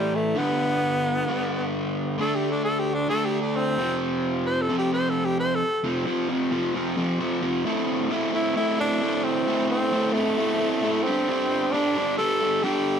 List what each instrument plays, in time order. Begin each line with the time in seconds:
Already playing: overdriven electric guitar A2 E3 A3, tenor saxophone G3
0.15 tenor saxophone A3
0.36 overdriven electric guitar G2 D3 G3, tenor saxophone B3
1.27 overdriven electric guitar G2 D3 G3
2.18 overdriven electric guitar D3 A3 D4, tenor saxophone A4
2.35 tenor saxophone G4
2.51 tenor saxophone D4
2.64 tenor saxophone A4
2.80 tenor saxophone G4
2.94 tenor saxophone D4
3.09 overdriven electric guitar D3 A3 D4, tenor saxophone A4
3.25 tenor saxophone G4
3.42 tenor saxophone D4
3.56 tenor saxophone C4
3.77 overdriven electric guitar F2 C3 F3
4.46 tenor saxophone C5
4.62 tenor saxophone A4
4.69 overdriven electric guitar F2 C3 F3
4.78 tenor saxophone G4
4.94 tenor saxophone C5
5.10 tenor saxophone A4
5.25 tenor saxophone G4
5.40 tenor saxophone C5
5.55 tenor saxophone A4
5.84 overdriven electric guitar F2 C3 F3
6.06 overdriven electric guitar F2 C3 F3
6.29 overdriven electric guitar F2 C3 F3
6.51 overdriven electric guitar F2 C3 F3
6.74 overdriven electric guitar F2 C3 F3
6.97 overdriven electric guitar F2 C3 F3
7.20 overdriven electric guitar F2 C3 F3
7.42 overdriven electric guitar F2 C3 F3
7.65 overdriven electric guitar A3 C4 E4 A4
8.10 overdriven electric guitar A3 C4 E4 A4
8.34 overdriven electric guitar C4 E4 A4, tenor saxophone E4
8.56 overdriven electric guitar A3 C4 E4 A4, tenor saxophone E4
8.79 overdriven electric guitar C4 E4 A4, tenor saxophone D4
9.02 overdriven electric guitar A3 C4 E4 A4
9.24 tenor saxophone C4
9.47 overdriven electric guitar A3 C4 E4 A4
9.70 tenor saxophone C4
9.92 overdriven electric guitar A3 C4 E4 A4
10.13 tenor saxophone A3, overdriven electric guitar C4 E4 A4
10.37 overdriven electric guitar A3 C4 E4 A4
10.60 overdriven electric guitar C4 E4 A4
10.83 overdriven electric guitar A3 C4 E4 A4
11.03 tenor saxophone C4, overdriven electric guitar D4 G4 A4
11.08 overdriven electric guitar G3
11.29 overdriven electric guitar G3 D4 G4 A4
11.73 overdriven electric guitar G3 D4 G4 A4, tenor saxophone D4
11.96 overdriven electric guitar D4 G4 A4
12.18 overdriven electric guitar G3 D4 G4 A4, tenor saxophone A4
12.41 overdriven electric guitar D4 G4 A4
12.63 overdriven electric guitar G3 D4 G4 A4, tenor saxophone G4